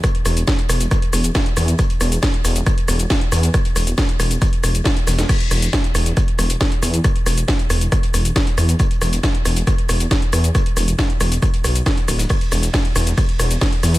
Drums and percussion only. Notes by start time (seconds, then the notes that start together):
0.04 kick, cross-stick, closed hi-hat, shaker
0.15 closed hi-hat
0.25 cross-stick, closed hi-hat, open hi-hat, shaker
0.37 closed hi-hat, shaker
0.47 kick, cross-stick, snare, closed hi-hat, shaker
0.59 closed hi-hat
0.68 cross-stick, closed hi-hat, open hi-hat, shaker
0.80 closed hi-hat, shaker
0.91 kick, cross-stick, closed hi-hat, shaker
1.02 closed hi-hat
1.13 cross-stick, closed hi-hat, open hi-hat, shaker
1.24 closed hi-hat, shaker
1.35 kick, cross-stick, snare, closed hi-hat, shaker
1.45 snare, closed hi-hat
1.57 cross-stick, closed hi-hat, open hi-hat, shaker
1.68 closed hi-hat, shaker
1.79 kick, cross-stick, closed hi-hat, shaker
1.90 closed hi-hat
2.01 cross-stick, closed hi-hat, open hi-hat, shaker
2.12 closed hi-hat, shaker
2.22 kick, cross-stick, snare, closed hi-hat, shaker
2.34 closed hi-hat
2.45 cross-stick, closed hi-hat, open hi-hat, shaker
2.56 closed hi-hat, shaker
2.66 kick, cross-stick, closed hi-hat, shaker
2.78 closed hi-hat
2.88 cross-stick, closed hi-hat, open hi-hat, shaker
2.99 closed hi-hat, shaker
3.10 kick, cross-stick, snare, closed hi-hat, shaker
3.21 closed hi-hat
3.32 cross-stick, closed hi-hat, open hi-hat, shaker
3.43 closed hi-hat, shaker
3.54 kick, cross-stick, closed hi-hat, shaker
3.65 closed hi-hat
3.76 cross-stick, closed hi-hat, open hi-hat, shaker
3.87 closed hi-hat, shaker
3.98 kick, cross-stick, snare, closed hi-hat, shaker
4.09 closed hi-hat
4.20 cross-stick, closed hi-hat, open hi-hat, shaker
4.31 closed hi-hat, shaker
4.42 kick, cross-stick, closed hi-hat, shaker
4.53 closed hi-hat
4.63 cross-stick, closed hi-hat, open hi-hat, shaker
4.75 closed hi-hat, shaker
4.84 kick, cross-stick, snare, closed hi-hat, shaker
4.96 snare, closed hi-hat
5.07 cross-stick, snare, closed hi-hat, open hi-hat, shaker
5.19 snare, closed hi-hat, shaker
5.29 kick, cross-stick, closed hi-hat, crash, shaker
5.40 closed hi-hat
5.51 cross-stick, closed hi-hat, open hi-hat, shaker
5.62 closed hi-hat, shaker
5.73 kick, cross-stick, snare, closed hi-hat, shaker
5.84 closed hi-hat
5.95 cross-stick, closed hi-hat, open hi-hat, shaker
6.06 closed hi-hat, shaker
6.17 kick, cross-stick, closed hi-hat, shaker
6.28 closed hi-hat
6.39 cross-stick, closed hi-hat, open hi-hat, shaker
6.50 closed hi-hat, shaker
6.61 kick, cross-stick, snare, closed hi-hat, shaker
6.72 closed hi-hat
6.83 cross-stick, closed hi-hat, open hi-hat, shaker
6.94 closed hi-hat, shaker
7.04 kick, cross-stick, closed hi-hat, shaker
7.16 closed hi-hat
7.26 cross-stick, closed hi-hat, open hi-hat, shaker
7.38 closed hi-hat, shaker
7.48 kick, cross-stick, snare, closed hi-hat, shaker
7.59 closed hi-hat
7.70 cross-stick, closed hi-hat, open hi-hat, shaker
7.81 closed hi-hat, shaker
7.92 kick, cross-stick, closed hi-hat, shaker
8.03 closed hi-hat
8.14 cross-stick, closed hi-hat, open hi-hat, shaker
8.25 closed hi-hat, shaker
8.36 kick, cross-stick, snare, closed hi-hat, shaker
8.47 snare, closed hi-hat
8.57 cross-stick, closed hi-hat, open hi-hat, shaker
8.69 closed hi-hat, shaker
8.79 kick, cross-stick, closed hi-hat, shaker
8.91 closed hi-hat
9.02 cross-stick, closed hi-hat, open hi-hat, shaker
9.13 closed hi-hat, shaker
9.23 kick, cross-stick, snare, closed hi-hat, shaker
9.35 closed hi-hat
9.45 cross-stick, closed hi-hat, open hi-hat, shaker
9.56 closed hi-hat, shaker
9.67 kick, cross-stick, closed hi-hat, shaker
9.78 closed hi-hat
9.89 cross-stick, closed hi-hat, open hi-hat, shaker
10.00 closed hi-hat, shaker
10.11 kick, cross-stick, snare, closed hi-hat, shaker
10.22 closed hi-hat
10.32 cross-stick, closed hi-hat, open hi-hat, shaker
10.44 closed hi-hat, shaker
10.55 kick, cross-stick, closed hi-hat, shaker
10.66 closed hi-hat
10.77 cross-stick, closed hi-hat, open hi-hat, shaker
10.88 closed hi-hat, shaker
10.99 kick, cross-stick, snare, closed hi-hat, shaker
11.10 closed hi-hat
11.21 cross-stick, closed hi-hat, open hi-hat, shaker
11.32 closed hi-hat, shaker
11.42 kick, cross-stick, closed hi-hat, shaker
11.54 closed hi-hat
11.64 cross-stick, closed hi-hat, open hi-hat, shaker
11.76 closed hi-hat, shaker
11.86 kick, cross-stick, snare, closed hi-hat, shaker
11.97 snare, closed hi-hat
12.08 cross-stick, closed hi-hat, open hi-hat, shaker
12.19 snare, closed hi-hat, shaker
12.29 kick, cross-stick, closed hi-hat, ride, shaker
12.41 closed hi-hat
12.51 cross-stick, closed hi-hat, open hi-hat, shaker
12.63 closed hi-hat, shaker
12.73 kick, cross-stick, snare, closed hi-hat, ride, shaker
12.85 closed hi-hat
12.96 cross-stick, closed hi-hat, open hi-hat, shaker
13.07 closed hi-hat, shaker
13.17 kick, cross-stick, closed hi-hat, ride, shaker
13.29 closed hi-hat
13.39 cross-stick, closed hi-hat, open hi-hat, shaker
13.51 closed hi-hat, shaker
13.61 kick, cross-stick, snare, closed hi-hat, ride, shaker
13.72 closed hi-hat
13.83 cross-stick, closed hi-hat, open hi-hat, shaker
13.94 closed hi-hat, shaker